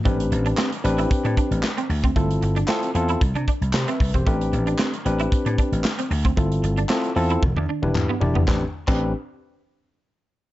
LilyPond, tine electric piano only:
\new Staff \with { instrumentName = "Tine electric piano" } { \time 4/4 \key a \minor \tempo 4 = 114 << { r1 | r2. <g' c''>16 <b' e''>8 <g' c''>16~ | <g' c''>16 r2. r8. | r1 |
r1 | } \\ { <c' d' g' b'>4~ <c' d' g' b'>16 r16 <c' d' g' b'>4. r4 | <c' e' f' a'>8. r16 <c' e' f' a'>8 <c' e' f' a'>8 r2 | <c' d' g' b'>4~ <c' d' g' b'>16 r16 <c' d' g' b'>4. r4 | <c' e' f' a'>8. r16 <c' e' f' a'>8 <c' e' f' a'>8 r8. <d' e' g' b'>8 r16 <d' e' g' d''>8 |
<c' d' g' b'>16 r8 <c' d' g' b'>8 r2 r8. | } >> }